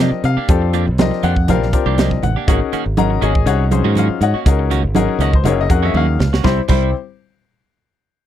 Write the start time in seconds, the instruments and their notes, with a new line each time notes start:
Already playing: fingered electric bass C3, grand piano C4 D4 F4 G4 A#4
0.00 clean electric guitar F3 A#3 D4 G4, grand piano D#5, high conga
0.11 muted fingered electric bass stroke, muted clean electric guitar stroke
0.24 fingered electric bass C3, grand piano F5, muted clean electric guitar stroke, closed hi-hat, muted conga
0.37 clean electric guitar A#3 D4 G4, muted fingered electric bass stroke
0.48 fingered electric bass F2, grand piano C4 D4 F4 G4 A4, kick, closed hi-hat
0.62 muted clean electric guitar stroke
0.74 clean electric guitar F3 A#3 D4 G4, closed hi-hat
0.87 fingered electric bass C2, muted clean electric guitar stroke
0.98 grand piano C4 D4 F4 G4 A#4 D#5, snare, closed hi-hat, high conga
1.11 muted clean electric guitar stroke, snare
1.23 fingered electric bass F2, clean electric guitar F3 A#3 D4 G4, grand piano F#5, closed hi-hat
1.36 muted clean electric guitar stroke, kick
1.48 fingered electric bass A#1, grand piano C4 D4 F4 G4 A#4 F5, muted clean electric guitar stroke, closed hi-hat, muted conga, high conga, low conga
1.62 snare
1.73 grand piano C4 D4 F4 G4 A#4, muted clean electric guitar stroke, kick, closed hi-hat
1.86 fingered electric bass C2, clean electric guitar F3 A#3 D4 G4
1.98 clean electric guitar F3 A#3 D4 G4, grand piano D#5, snare, closed hi-hat, high conga
2.11 kick
2.22 fingered electric bass A1, grand piano F#5, muted clean electric guitar stroke, closed hi-hat, muted conga, low conga
2.36 clean electric guitar A#3 D4 G4
2.47 fingered electric bass G#1, clean electric guitar D#3 A#3 C#4 F#4, grand piano C#4 D#4 F#4 G#4 A#4, kick, closed hi-hat, muted conga
2.72 clean electric guitar D#3 A#3 C#4 F#4, muted fingered electric bass stroke, closed hi-hat
2.86 fingered electric bass G#1, muted clean electric guitar stroke
2.97 grand piano C#4 D#4 F#4 G#4 A#4 D#5 F#5 A#5, closed hi-hat, high conga
3.10 muted clean electric guitar stroke
3.21 fingered electric bass G#1, clean electric guitar D#3 A#3 C#4 F#4, grand piano G#4 C#5 D#5 G#5, closed hi-hat
3.35 kick
3.46 fingered electric bass C2, grand piano C#4 D#4 F#4 G#4 C#5 D#5 F#5, muted clean electric guitar stroke, closed hi-hat, muted conga
3.71 grand piano C#4 D#4 F#4 G#4 C5, muted clean electric guitar stroke, closed hi-hat, high conga
3.84 fingered electric bass G#2, clean electric guitar D#3 A#3 C#4 F#4
3.95 clean electric guitar D#3 A#3 C#4 F#4, grand piano F4 F5, closed hi-hat, high conga
4.09 muted clean electric guitar stroke, muted fingered electric bass stroke
4.21 fingered electric bass G#2, grand piano F#4 C#5 D#5 F#5, muted clean electric guitar stroke, closed hi-hat, muted conga
4.34 clean electric guitar A#3 C#4 F#4, muted fingered electric bass stroke
4.46 fingered electric bass C#2, grand piano C#4 D#4 F#4 G#4 A#4, kick, closed hi-hat, muted conga
4.59 muted clean electric guitar stroke
4.71 clean electric guitar D#3 A#3 C#4 F#4, closed hi-hat, muted conga
4.83 fingered electric bass G#1, muted clean electric guitar stroke
4.95 grand piano C#4 D#4 F#4 G#4 A#4, closed hi-hat, high conga
5.09 muted clean electric guitar stroke
5.19 fingered electric bass C#2, clean electric guitar D#3 A#3 C#4 F#4, grand piano D#5, closed hi-hat
5.33 grand piano C5, muted clean electric guitar stroke, kick
5.44 fingered electric bass F#1, grand piano C#4 D#4 F#4 G#4 A#4 C#5, muted clean electric guitar stroke, closed hi-hat, muted conga, high conga, low conga
5.61 grand piano D#5
5.69 fingered electric bass F2, grand piano C#4 D#4 F#4 G#4 A#4 F#5, muted clean electric guitar stroke, kick, closed hi-hat
5.83 clean electric guitar D#3 A#3 C#4 F#4, grand piano E5
5.94 fingered electric bass D#2, clean electric guitar D#3 A#3 C#4 F#4, grand piano F5, high tom, high conga
6.08 muted clean electric guitar stroke
6.19 fingered electric bass C#2, muted clean electric guitar stroke, snare, muted conga, low conga
6.33 clean electric guitar A#3 C#4 F#4, snare
6.44 fingered electric bass C2, clean electric guitar G3 C4 E4, grand piano G3 C4 E4 G4 C5, kick, snare, muted conga
6.68 fingered electric bass C2, clean electric guitar G3 C4 E4, grand piano G3 C4 E4 G4 C5, kick, crash, muted conga